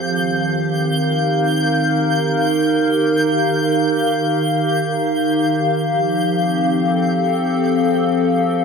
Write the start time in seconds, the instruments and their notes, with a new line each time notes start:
Already playing: synth drone F3, ambient pad C4 G4 F5
0.04 ambient pad D#3, synth texture G6
0.59 ambient pad D#4
0.68 ambient pad A#4
5.75 ambient pad F3
6.22 ambient pad C4
6.58 ambient pad A4